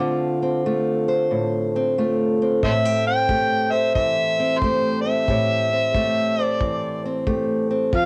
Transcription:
0.00 2.64 D3 medium
0.00 0.65 A3 medium
0.00 0.42 C4 medium
0.00 0.65 F4 medium
0.42 1.75 C4 medium
0.66 1.98 A3 medium
0.66 1.97 F4 medium
1.08 3.72 C5 medium
1.31 2.63 A2 medium
1.76 2.42 C4 medium
1.98 2.88 A3 medium
1.98 2.61 F4 medium
2.42 3.08 C4 medium
2.63 5.28 A2 medium
2.63 2.85 E4 medium
2.63 2.73 A4 medium
2.63 2.71 C5 medium
2.63 3.04 E5 loud
2.63 kick medium
2.85 3.29 G4 medium
3.07 4.39 C4 medium
3.07 3.73 G5 loud
3.29 4.63 A3 medium
3.29 4.63 G4 medium
3.29 kick medium
3.71 6.38 C5 medium
3.71 3.94 E5 medium
3.94 6.60 E3 medium
3.94 4.60 E5 loud
3.94 kick medium
4.40 5.05 C4 medium
4.58 5.01 C5 medium
4.58 kick medium
4.64 5.32 A3 medium
4.64 5.27 G4 medium
5.01 6.43 E5 loud
5.06 5.72 C4 medium
5.28 7.94 A2 medium
5.28 5.94 G4 medium
5.28 kick medium
5.73 7.04 C4 medium
5.95 7.26 A3 medium
5.95 7.26 G4 medium
5.95 kick medium
6.39 7.91 C5 medium
6.43 7.21 D5 loud
6.60 7.93 E3 medium
6.60 kick medium
7.05 7.69 C4 medium
7.27 7.90 A3 medium
7.27 7.90 G4 medium
7.27 kick medium
7.71 8.06 C4 medium
7.93 8.06 F3 medium
7.93 8.06 F4 medium
7.93 8.06 F5 loud
7.93 kick medium

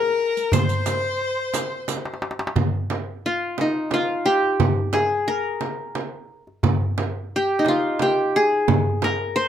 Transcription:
0.00 0.38 G#4 medium
0.00 0.55 A#4 medium
0.00 0.98 A#4 medium
0.37 riq soft
0.52 2.18 C5 medium
0.52 2.23 C5 medium
0.52 riq medium
0.52 darbuka dum medium
0.52 frame drum medium
0.69 riq soft
0.69 darbuka ka soft
0.86 riq soft
0.86 darbuka tek medium
0.86 frame drum medium
1.54 riq soft
1.54 darbuka tek medium
1.54 frame drum medium
1.88 riq soft
1.88 darbuka tek soft
1.88 frame drum medium
1.97 darbuka ka medium
2.05 darbuka tek medium
2.14 darbuka ka medium
2.22 darbuka tek medium
2.31 darbuka ka medium
2.39 darbuka tek medium
2.47 darbuka ka loud
2.56 darbuka dum medium
2.56 frame drum medium
2.74 darbuka ka soft
2.90 darbuka tek medium
2.90 frame drum medium
3.26 3.93 F4 medium
3.58 5.05 D#4 medium
3.58 darbuka tek medium
3.58 frame drum medium
3.91 5.28 F4 medium
3.91 darbuka tek medium
3.91 frame drum medium
4.26 4.99 G4 medium
4.43 darbuka ka soft
4.60 darbuka dum medium
4.60 frame drum medium
4.76 darbuka ka soft
4.93 6.15 G#4 medium
4.93 darbuka tek medium
4.93 frame drum medium
5.28 6.41 A#4 medium
5.61 darbuka tek medium
5.61 frame drum medium
5.95 darbuka tek medium
5.95 frame drum medium
6.47 darbuka ka soft
6.63 darbuka dum loud
6.63 frame drum medium
6.81 darbuka ka soft
6.98 darbuka tek medium
6.98 frame drum medium
7.36 8.02 G4 medium
7.59 9.03 D#4 medium
7.65 9.03 F4 medium
7.65 darbuka tek medium
7.65 frame drum medium
7.99 8.42 G4 medium
7.99 darbuka tek medium
7.99 frame drum medium
8.36 9.48 G#4 medium
8.51 darbuka ka soft
8.68 frame drum medium
8.68 darbuka dum medium
8.86 darbuka ka soft
9.02 9.48 A#4 medium
9.02 darbuka tek medium
9.02 frame drum medium
9.36 9.48 C5 medium

